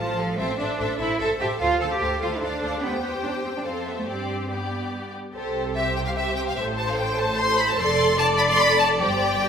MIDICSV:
0, 0, Header, 1, 6, 480
1, 0, Start_track
1, 0, Key_signature, 0, "major"
1, 0, Tempo, 404040
1, 467, Time_signature, 3, 2, 24, 8
1, 3354, Tempo, 420463
1, 6714, Tempo, 404585
1, 10074, Tempo, 420463
1, 11087, End_track
2, 0, Start_track
2, 0, Title_t, "Violin section"
2, 0, Program_c, 0, 48
2, 0, Note_on_c, 0, 81, 47
2, 202, Note_off_c, 0, 81, 0
2, 219, Note_on_c, 0, 77, 44
2, 450, Note_on_c, 0, 76, 50
2, 462, Note_off_c, 0, 77, 0
2, 678, Note_off_c, 0, 76, 0
2, 693, Note_on_c, 0, 76, 44
2, 923, Note_off_c, 0, 76, 0
2, 937, Note_on_c, 0, 76, 49
2, 1154, Note_off_c, 0, 76, 0
2, 1168, Note_on_c, 0, 76, 45
2, 1391, Note_off_c, 0, 76, 0
2, 1406, Note_on_c, 0, 76, 50
2, 1634, Note_off_c, 0, 76, 0
2, 1648, Note_on_c, 0, 76, 47
2, 1874, Note_on_c, 0, 77, 49
2, 1896, Note_off_c, 0, 76, 0
2, 2116, Note_off_c, 0, 77, 0
2, 2131, Note_on_c, 0, 77, 40
2, 2363, Note_off_c, 0, 77, 0
2, 2378, Note_on_c, 0, 77, 49
2, 2612, Note_off_c, 0, 77, 0
2, 2626, Note_on_c, 0, 77, 41
2, 2863, Note_off_c, 0, 77, 0
2, 2891, Note_on_c, 0, 77, 47
2, 3118, Note_off_c, 0, 77, 0
2, 3140, Note_on_c, 0, 77, 45
2, 3363, Note_off_c, 0, 77, 0
2, 3368, Note_on_c, 0, 79, 44
2, 4258, Note_off_c, 0, 79, 0
2, 4298, Note_on_c, 0, 77, 40
2, 4540, Note_off_c, 0, 77, 0
2, 4544, Note_on_c, 0, 76, 36
2, 4786, Note_off_c, 0, 76, 0
2, 4789, Note_on_c, 0, 74, 34
2, 5256, Note_off_c, 0, 74, 0
2, 5269, Note_on_c, 0, 74, 38
2, 5990, Note_off_c, 0, 74, 0
2, 6705, Note_on_c, 0, 76, 61
2, 6937, Note_off_c, 0, 76, 0
2, 6946, Note_on_c, 0, 79, 58
2, 6998, Note_off_c, 0, 79, 0
2, 7078, Note_on_c, 0, 77, 58
2, 7127, Note_off_c, 0, 77, 0
2, 7186, Note_on_c, 0, 76, 67
2, 7428, Note_on_c, 0, 79, 66
2, 7434, Note_off_c, 0, 76, 0
2, 7480, Note_off_c, 0, 79, 0
2, 7568, Note_on_c, 0, 77, 61
2, 7668, Note_on_c, 0, 76, 65
2, 7687, Note_off_c, 0, 77, 0
2, 7763, Note_off_c, 0, 76, 0
2, 7919, Note_on_c, 0, 81, 65
2, 8042, Note_off_c, 0, 81, 0
2, 8058, Note_on_c, 0, 77, 59
2, 8163, Note_on_c, 0, 79, 70
2, 8173, Note_off_c, 0, 77, 0
2, 8402, Note_off_c, 0, 79, 0
2, 8407, Note_on_c, 0, 81, 80
2, 8643, Note_off_c, 0, 81, 0
2, 8645, Note_on_c, 0, 84, 97
2, 8881, Note_on_c, 0, 83, 86
2, 8882, Note_off_c, 0, 84, 0
2, 9000, Note_off_c, 0, 83, 0
2, 9015, Note_on_c, 0, 81, 81
2, 9121, Note_on_c, 0, 84, 98
2, 9126, Note_off_c, 0, 81, 0
2, 9588, Note_on_c, 0, 81, 100
2, 9592, Note_off_c, 0, 84, 0
2, 9683, Note_off_c, 0, 81, 0
2, 9819, Note_on_c, 0, 83, 89
2, 9870, Note_off_c, 0, 83, 0
2, 9959, Note_on_c, 0, 84, 96
2, 10070, Note_on_c, 0, 83, 99
2, 10075, Note_off_c, 0, 84, 0
2, 10306, Note_on_c, 0, 81, 83
2, 10309, Note_off_c, 0, 83, 0
2, 10397, Note_off_c, 0, 81, 0
2, 10545, Note_on_c, 0, 79, 79
2, 11087, Note_off_c, 0, 79, 0
2, 11087, End_track
3, 0, Start_track
3, 0, Title_t, "Violin section"
3, 0, Program_c, 1, 48
3, 0, Note_on_c, 1, 72, 42
3, 206, Note_off_c, 1, 72, 0
3, 241, Note_on_c, 1, 69, 43
3, 453, Note_on_c, 1, 72, 52
3, 472, Note_off_c, 1, 69, 0
3, 674, Note_off_c, 1, 72, 0
3, 688, Note_on_c, 1, 72, 45
3, 925, Note_off_c, 1, 72, 0
3, 939, Note_on_c, 1, 72, 45
3, 1178, Note_off_c, 1, 72, 0
3, 1200, Note_on_c, 1, 72, 45
3, 1403, Note_off_c, 1, 72, 0
3, 1417, Note_on_c, 1, 72, 49
3, 1631, Note_off_c, 1, 72, 0
3, 1646, Note_on_c, 1, 72, 46
3, 1891, Note_off_c, 1, 72, 0
3, 1905, Note_on_c, 1, 72, 50
3, 2125, Note_off_c, 1, 72, 0
3, 2140, Note_on_c, 1, 72, 47
3, 2375, Note_off_c, 1, 72, 0
3, 2389, Note_on_c, 1, 72, 41
3, 2616, Note_off_c, 1, 72, 0
3, 2631, Note_on_c, 1, 72, 47
3, 2822, Note_off_c, 1, 72, 0
3, 2836, Note_on_c, 1, 72, 45
3, 3079, Note_off_c, 1, 72, 0
3, 3093, Note_on_c, 1, 72, 42
3, 3335, Note_off_c, 1, 72, 0
3, 3349, Note_on_c, 1, 72, 48
3, 4249, Note_off_c, 1, 72, 0
3, 4285, Note_on_c, 1, 72, 40
3, 4767, Note_off_c, 1, 72, 0
3, 4790, Note_on_c, 1, 67, 38
3, 5265, Note_off_c, 1, 67, 0
3, 5279, Note_on_c, 1, 67, 35
3, 5994, Note_off_c, 1, 67, 0
3, 6231, Note_on_c, 1, 67, 44
3, 6234, Note_on_c, 1, 72, 44
3, 6675, Note_off_c, 1, 67, 0
3, 6677, Note_off_c, 1, 72, 0
3, 6715, Note_on_c, 1, 72, 42
3, 6722, Note_on_c, 1, 67, 44
3, 7195, Note_off_c, 1, 67, 0
3, 7195, Note_off_c, 1, 72, 0
3, 7209, Note_on_c, 1, 67, 48
3, 7211, Note_on_c, 1, 72, 52
3, 7684, Note_off_c, 1, 67, 0
3, 7684, Note_off_c, 1, 72, 0
3, 7696, Note_on_c, 1, 72, 53
3, 7697, Note_on_c, 1, 69, 53
3, 8626, Note_off_c, 1, 72, 0
3, 8642, Note_off_c, 1, 69, 0
3, 8646, Note_on_c, 1, 72, 60
3, 8656, Note_on_c, 1, 69, 59
3, 9089, Note_off_c, 1, 69, 0
3, 9103, Note_on_c, 1, 69, 67
3, 9109, Note_on_c, 1, 74, 67
3, 9110, Note_off_c, 1, 72, 0
3, 9565, Note_off_c, 1, 69, 0
3, 9571, Note_off_c, 1, 74, 0
3, 9579, Note_on_c, 1, 69, 70
3, 9586, Note_on_c, 1, 74, 72
3, 10526, Note_off_c, 1, 69, 0
3, 10530, Note_off_c, 1, 74, 0
3, 10562, Note_on_c, 1, 72, 57
3, 10569, Note_on_c, 1, 67, 59
3, 11087, Note_off_c, 1, 67, 0
3, 11087, Note_off_c, 1, 72, 0
3, 11087, End_track
4, 0, Start_track
4, 0, Title_t, "Viola section"
4, 0, Program_c, 2, 48
4, 0, Note_on_c, 2, 65, 43
4, 210, Note_off_c, 2, 65, 0
4, 232, Note_on_c, 2, 69, 41
4, 453, Note_off_c, 2, 69, 0
4, 468, Note_on_c, 2, 69, 48
4, 692, Note_off_c, 2, 69, 0
4, 707, Note_on_c, 2, 69, 45
4, 921, Note_off_c, 2, 69, 0
4, 935, Note_on_c, 2, 69, 48
4, 1163, Note_off_c, 2, 69, 0
4, 1177, Note_on_c, 2, 69, 47
4, 1412, Note_off_c, 2, 69, 0
4, 1426, Note_on_c, 2, 69, 47
4, 1652, Note_off_c, 2, 69, 0
4, 1666, Note_on_c, 2, 69, 47
4, 1889, Note_off_c, 2, 69, 0
4, 1903, Note_on_c, 2, 69, 48
4, 2125, Note_off_c, 2, 69, 0
4, 2139, Note_on_c, 2, 69, 44
4, 2376, Note_off_c, 2, 69, 0
4, 2391, Note_on_c, 2, 69, 47
4, 2609, Note_off_c, 2, 69, 0
4, 2623, Note_on_c, 2, 69, 46
4, 2845, Note_off_c, 2, 69, 0
4, 2859, Note_on_c, 2, 69, 49
4, 3088, Note_off_c, 2, 69, 0
4, 3102, Note_on_c, 2, 69, 42
4, 3344, Note_off_c, 2, 69, 0
4, 3349, Note_on_c, 2, 67, 47
4, 4249, Note_off_c, 2, 67, 0
4, 4290, Note_on_c, 2, 69, 38
4, 4775, Note_on_c, 2, 67, 37
4, 4780, Note_off_c, 2, 69, 0
4, 5256, Note_off_c, 2, 67, 0
4, 5269, Note_on_c, 2, 67, 34
4, 5990, Note_off_c, 2, 67, 0
4, 6237, Note_on_c, 2, 69, 52
4, 6678, Note_off_c, 2, 69, 0
4, 6713, Note_on_c, 2, 67, 43
4, 7690, Note_off_c, 2, 67, 0
4, 7694, Note_on_c, 2, 72, 65
4, 9091, Note_off_c, 2, 72, 0
4, 9115, Note_on_c, 2, 69, 72
4, 9589, Note_off_c, 2, 69, 0
4, 9589, Note_on_c, 2, 74, 87
4, 10525, Note_off_c, 2, 74, 0
4, 10539, Note_on_c, 2, 74, 67
4, 11087, Note_off_c, 2, 74, 0
4, 11087, End_track
5, 0, Start_track
5, 0, Title_t, "Cello section"
5, 0, Program_c, 3, 48
5, 6, Note_on_c, 3, 53, 73
5, 473, Note_off_c, 3, 53, 0
5, 478, Note_on_c, 3, 60, 77
5, 711, Note_off_c, 3, 60, 0
5, 716, Note_on_c, 3, 62, 65
5, 1182, Note_off_c, 3, 62, 0
5, 1194, Note_on_c, 3, 64, 71
5, 1428, Note_off_c, 3, 64, 0
5, 1433, Note_on_c, 3, 69, 79
5, 1528, Note_off_c, 3, 69, 0
5, 1672, Note_on_c, 3, 67, 70
5, 1767, Note_off_c, 3, 67, 0
5, 1906, Note_on_c, 3, 65, 83
5, 2145, Note_off_c, 3, 65, 0
5, 2145, Note_on_c, 3, 69, 67
5, 2194, Note_off_c, 3, 69, 0
5, 2273, Note_on_c, 3, 67, 71
5, 2623, Note_off_c, 3, 67, 0
5, 2632, Note_on_c, 3, 65, 62
5, 2679, Note_off_c, 3, 65, 0
5, 2758, Note_on_c, 3, 64, 59
5, 2863, Note_on_c, 3, 62, 69
5, 2872, Note_off_c, 3, 64, 0
5, 3351, Note_off_c, 3, 62, 0
5, 3352, Note_on_c, 3, 59, 73
5, 3470, Note_off_c, 3, 59, 0
5, 3477, Note_on_c, 3, 57, 46
5, 3583, Note_on_c, 3, 59, 58
5, 3592, Note_off_c, 3, 57, 0
5, 3674, Note_off_c, 3, 59, 0
5, 3829, Note_on_c, 3, 62, 60
5, 3920, Note_off_c, 3, 62, 0
5, 4066, Note_on_c, 3, 60, 49
5, 4112, Note_off_c, 3, 60, 0
5, 4193, Note_on_c, 3, 62, 49
5, 4237, Note_off_c, 3, 62, 0
5, 4305, Note_on_c, 3, 60, 57
5, 4539, Note_off_c, 3, 60, 0
5, 4550, Note_on_c, 3, 59, 50
5, 4667, Note_off_c, 3, 59, 0
5, 4683, Note_on_c, 3, 57, 45
5, 4788, Note_on_c, 3, 60, 54
5, 4792, Note_off_c, 3, 57, 0
5, 5263, Note_off_c, 3, 60, 0
5, 5271, Note_on_c, 3, 59, 42
5, 5999, Note_off_c, 3, 59, 0
5, 6234, Note_on_c, 3, 48, 50
5, 7640, Note_off_c, 3, 48, 0
5, 7689, Note_on_c, 3, 45, 55
5, 9089, Note_off_c, 3, 45, 0
5, 9115, Note_on_c, 3, 41, 71
5, 10521, Note_off_c, 3, 41, 0
5, 10557, Note_on_c, 3, 43, 65
5, 11087, Note_off_c, 3, 43, 0
5, 11087, End_track
6, 0, Start_track
6, 0, Title_t, "Double bass section"
6, 0, Program_c, 4, 48
6, 0, Note_on_c, 4, 33, 49
6, 443, Note_off_c, 4, 33, 0
6, 476, Note_on_c, 4, 33, 54
6, 570, Note_off_c, 4, 33, 0
6, 714, Note_on_c, 4, 33, 52
6, 808, Note_off_c, 4, 33, 0
6, 955, Note_on_c, 4, 33, 53
6, 1049, Note_off_c, 4, 33, 0
6, 1190, Note_on_c, 4, 33, 55
6, 1285, Note_off_c, 4, 33, 0
6, 1430, Note_on_c, 4, 33, 52
6, 1525, Note_off_c, 4, 33, 0
6, 1680, Note_on_c, 4, 33, 51
6, 1775, Note_off_c, 4, 33, 0
6, 1912, Note_on_c, 4, 38, 61
6, 2007, Note_off_c, 4, 38, 0
6, 2157, Note_on_c, 4, 38, 53
6, 2252, Note_off_c, 4, 38, 0
6, 2393, Note_on_c, 4, 38, 54
6, 2488, Note_off_c, 4, 38, 0
6, 2633, Note_on_c, 4, 38, 53
6, 2728, Note_off_c, 4, 38, 0
6, 2869, Note_on_c, 4, 38, 48
6, 2965, Note_off_c, 4, 38, 0
6, 3105, Note_on_c, 4, 38, 51
6, 3200, Note_off_c, 4, 38, 0
6, 3353, Note_on_c, 4, 40, 50
6, 4251, Note_off_c, 4, 40, 0
6, 4309, Note_on_c, 4, 41, 41
6, 4780, Note_off_c, 4, 41, 0
6, 4788, Note_on_c, 4, 43, 39
6, 6007, Note_off_c, 4, 43, 0
6, 6242, Note_on_c, 4, 36, 50
6, 7644, Note_off_c, 4, 36, 0
6, 7698, Note_on_c, 4, 33, 57
6, 9093, Note_off_c, 4, 33, 0
6, 9130, Note_on_c, 4, 29, 71
6, 10529, Note_off_c, 4, 29, 0
6, 10567, Note_on_c, 4, 31, 60
6, 11087, Note_off_c, 4, 31, 0
6, 11087, End_track
0, 0, End_of_file